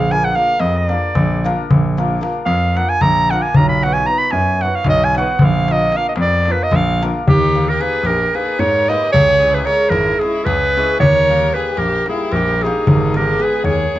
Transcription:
Already playing: grand piano A#1, clarinet F5
0.11 hammered dulcimer A#3 D4 F4 A#4, clarinet G#5, darbuka tek
0.25 clarinet F#5
0.35 hammered dulcimer A#3 D4 F4 A#4, clarinet F5, darbuka tek
0.47 darbuka tek
0.60 grand piano F2, clarinet D#5, darbuka tek
0.77 clarinet D#5
0.88 hammered dulcimer A#3 D4 F4 A#4, clarinet D5, darbuka tek
1.03 darbuka tek
1.15 grand piano A#1, darbuka tek, darbuka dum
1.32 darbuka tek
1.44 hammered dulcimer A#3 D4 F4 A#4, darbuka tek
1.71 grand piano A#1, darbuka dum
1.97 hammered dulcimer A#3 D4 F4 A#4, darbuka tek
2.11 darbuka tek
2.21 hammered dulcimer A#3 D4 F4 A#4, darbuka tek
2.35 darbuka tek
2.46 grand piano F2, clarinet F5, darbuka tek
2.74 hammered dulcimer A#3 D4 F4 A#4, clarinet F#5, darbuka tek
2.89 clarinet G#5, darbuka tek
3.01 grand piano A#1, clarinet A#5, darbuka tek, darbuka dum
3.16 darbuka tek
3.31 hammered dulcimer A#3 D4 F4 A#4, clarinet F#5, darbuka tek
3.42 clarinet G#5
3.54 grand piano B1, clarinet A#5, darbuka dum
3.69 clarinet B5
3.83 hammered dulcimer B3 D#4 F#4 B4, clarinet F#5, darbuka tek
3.94 clarinet G#5, darbuka tek
4.06 hammered dulcimer B3 D#4 F#4 B4, clarinet A#5, darbuka tek
4.18 clarinet B5, darbuka tek
4.31 grand piano F#2, clarinet G#5, darbuka tek
4.61 hammered dulcimer B3 D#4 F#4, clarinet F#5, darbuka tek
4.65 hammered dulcimer B4
4.75 clarinet F5, darbuka tek
4.84 grand piano B1, darbuka tek, darbuka dum
4.89 clarinet D#5
5.00 darbuka tek
5.05 clarinet G#5
5.15 hammered dulcimer B3 D#4 F#4 B4, clarinet F#5, darbuka tek
5.39 grand piano A#1, darbuka dum
5.45 clarinet F5
5.54 darbuka tek
5.68 hammered dulcimer A#3 D4 F4 A#4, clarinet D#5, darbuka tek
5.80 darbuka tek
5.92 hammered dulcimer A#3 D4 F4 A#4, darbuka tek
5.97 clarinet F5
6.09 clarinet D#5
6.16 grand piano F2, darbuka tek
6.21 clarinet D5
6.46 hammered dulcimer A#3 D4 F4, darbuka tek
6.50 hammered dulcimer A#4, clarinet B4
6.58 darbuka tek
6.63 clarinet D#5
6.71 grand piano A#1, darbuka tek, darbuka dum
6.76 clarinet F5
6.87 darbuka tek
7.01 hammered dulcimer A#3 D4 F4 A#4, darbuka tek
7.28 grand piano D#2, violin D#4, clarinet G4, darbuka dum
7.41 darbuka tek
7.55 hammered dulcimer A#3 D#4 G4 A#4, darbuka tek
7.68 violin G4, clarinet A#4, darbuka tek
7.80 hammered dulcimer A#3 D#4 G4 A#4, violin G#4, clarinet B4, darbuka tek
7.92 darbuka tek
8.03 grand piano A#1, violin G4, clarinet A#4, darbuka tek
8.34 hammered dulcimer A#3 D#4 G4 A#4, violin G#4, clarinet B4, darbuka tek
8.46 darbuka tek
8.59 grand piano G#2, violin A#4, clarinet C#5, darbuka tek
8.76 darbuka tek
8.88 hammered dulcimer A#3 D#4 G4 A#4, violin B4, clarinet D#5, darbuka tek
9.03 darbuka tek
9.12 grand piano C#2, violin G#4, clarinet C#5
9.16 darbuka dum
9.30 darbuka tek
9.41 hammered dulcimer G#3 C#4 E4 G#4, darbuka tek
9.54 violin G#4, clarinet B4, darbuka tek
9.65 hammered dulcimer G#3 C#4 E4, violin A#4, clarinet C#5, darbuka tek
9.69 hammered dulcimer G#4
9.90 grand piano G#1, violin E4, clarinet A#4, darbuka tek
10.19 hammered dulcimer G#3 C#4 E4, violin E4, clarinet G#4, darbuka tek
10.23 hammered dulcimer G#4
10.35 darbuka tek
10.45 grand piano C#2, violin G#4, clarinet B4, darbuka tek
10.62 darbuka tek
10.77 hammered dulcimer G#3 C#4 E4 G#4, darbuka tek
10.90 darbuka tek
11.00 grand piano D#2, violin A#4, clarinet C#5, darbuka dum
11.28 hammered dulcimer G3 A#3 D#4 G4, darbuka tek
11.43 darbuka tek
11.53 hammered dulcimer G3 A#3 D#4 G4, violin G#4, clarinet B4, darbuka tek
11.65 darbuka tek
11.77 grand piano A#1, violin G4, clarinet A#4, darbuka tek
12.06 hammered dulcimer G3 A#3 D#4 G4, clarinet G#4, darbuka tek
12.10 violin E4
12.19 darbuka tek
12.32 grand piano A#1, violin G4, clarinet A#4, darbuka tek
12.47 darbuka tek
12.61 hammered dulcimer G3 A#3, violin D#4, clarinet G#4, darbuka tek
12.66 hammered dulcimer D#4 G4
12.75 darbuka tek
12.87 grand piano G#1, darbuka dum
13.01 darbuka tek
13.14 hammered dulcimer G#3 B3 D#4 G#4, clarinet A#4, darbuka tek
13.19 violin G4
13.28 darbuka tek
13.38 hammered dulcimer G#3 B3 D#4 G#4, clarinet B4, darbuka tek
13.44 violin G#4
13.52 darbuka tek
13.64 grand piano D#2, violin G#4, clarinet C#5, darbuka tek
13.94 hammered dulcimer G#3 B3 D#4 G#4, darbuka tek

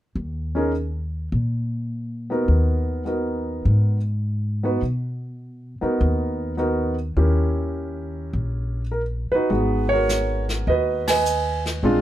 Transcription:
0.15 upright bass D#2
0.55 grand piano C#4 D#4 G#4 A#4
1.32 upright bass A#2
2.30 grand piano B3 D#4 F#4 A#4
2.48 upright bass D#2
3.05 grand piano B3 D#4 F#4 A#4
3.65 upright bass G#2
4.63 grand piano B3 D#4 F#4 B4
4.82 upright bass B2
5.81 grand piano B3 D#4 F#4 A#4, muted upright bass stroke
6.01 upright bass D#2
6.57 grand piano B3 D#4 F#4 A#4
7.17 upright bass D#2, grand piano C#4 E4 G4 A#4
8.33 upright bass A#1
8.91 grand piano A#4
9.31 grand piano D#4 F#4 B4, muted upright bass stroke
9.49 upright bass G#1, grand piano G#3 B3 D#4 F#4, brush sweep
9.89 grand piano C#5
9.93 grand piano F#4 A#4
10.09 snare, hi-hat pedal
10.49 snare
10.67 upright bass D#2, grand piano F#4 B4 D#5, brush sweep
11.07 grand piano B4 D#5 G#5, snare, ride
11.26 hi-hat pedal
11.66 snare
11.83 upright bass A#1, grand piano G#3 C4 D4 F4, brush sweep

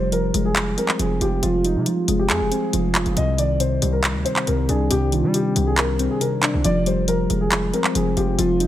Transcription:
Already playing: 808-style bass F1, synth keys F3 G3, grand piano C5
0.12 synth keys F3, grand piano A#4, closed hi-hat
0.34 808-style bass F1, synth keys G#3, closed hi-hat
0.45 grand piano G#4
0.56 clap, closed hi-hat
0.78 synth keys C4, grand piano A#4, closed hi-hat
0.89 clap
0.99 808-style bass F1, synth keys F3, grand piano G#4, closed hi-hat
1.21 808-style bass F1, synth keys F4, grand piano G4, closed hi-hat
1.43 808-style bass F1, synth keys F3, grand piano F4, closed hi-hat
1.65 grand piano D#4, closed hi-hat
1.75 808-style bass C3
1.86 synth keys F3, grand piano F4, closed hi-hat
2.08 808-style bass F1, synth keys G#3, closed hi-hat
2.19 grand piano G4
2.30 808-style bass F2, grand piano G#4, clap, closed hi-hat
2.41 808-style bass F1
2.52 synth keys C4, closed hi-hat
2.73 808-style bass F1, synth keys F3, closed hi-hat
2.94 synth keys F4, clap, closed hi-hat, open hi-hat
3.06 808-style bass F1, closed hi-hat
3.16 808-style bass C2, synth keys C3, grand piano D#5, closed hi-hat
3.38 synth keys D#3, grand piano D5, closed hi-hat
3.60 synth keys C3, grand piano C5, closed hi-hat
3.82 808-style bass C2, synth keys G3, closed hi-hat
3.93 grand piano A#4
4.04 clap, closed hi-hat
4.15 808-style bass D2
4.25 synth keys C4, grand piano C5, closed hi-hat
4.36 clap
4.47 808-style bass C2, synth keys C3, grand piano A#4, closed hi-hat
4.69 808-style bass C2, synth keys D4, grand piano G#4, closed hi-hat
4.90 808-style bass C2, synth keys C3, grand piano G4, closed hi-hat
5.12 synth keys D#3, grand piano F4, closed hi-hat
5.23 808-style bass G3
5.34 synth keys C3, grand piano G4, closed hi-hat
5.56 808-style bass C2, synth keys G3, closed hi-hat
5.67 grand piano G#4
5.77 grand piano A#4, clap, closed hi-hat
5.99 synth keys C4, closed hi-hat
6.10 grand piano G#4
6.21 synth keys C3, grand piano A#4, closed hi-hat
6.43 synth keys D4, clap, closed hi-hat
6.54 808-style bass C2
6.64 808-style bass F1, synth keys F3, grand piano D5, closed hi-hat
6.86 synth keys G3, grand piano C5, closed hi-hat
7.08 synth keys F3, grand piano A#4, closed hi-hat
7.30 808-style bass F1, synth keys G#3, closed hi-hat
7.41 grand piano G#4
7.52 clap, closed hi-hat
7.74 synth keys C4, grand piano A#4, closed hi-hat
7.84 clap
7.95 808-style bass F1, synth keys F3, grand piano G#4, closed hi-hat
8.17 808-style bass F1, synth keys F4, grand piano G4, closed hi-hat
8.38 808-style bass F1, synth keys F3, grand piano F4, closed hi-hat
8.60 grand piano D#4, closed hi-hat

